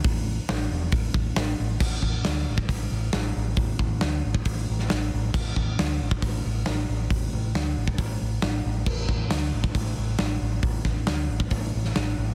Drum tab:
CC |----------------|x---------------|----------------|x---------------|
HH |o---o---o---o---|----o---o---o---|o---o---o---o---|----o---o---o---|
SD |----o-------o---|----o-------o---|----o------oo---|----o-------o---|
BD |o-------o-o-----|o-o----oo-------|o-o----oo-------|o-o----oo-------|

CC |----------------|x---------------|----------------|
HH |o---o---o---o---|----o---o---o---|o---o---o---o---|
SD |----o-------o---|----o-------o---|--o-o------oo---|
BD |o------oo-------|o-o----oo-------|o-o----oo-------|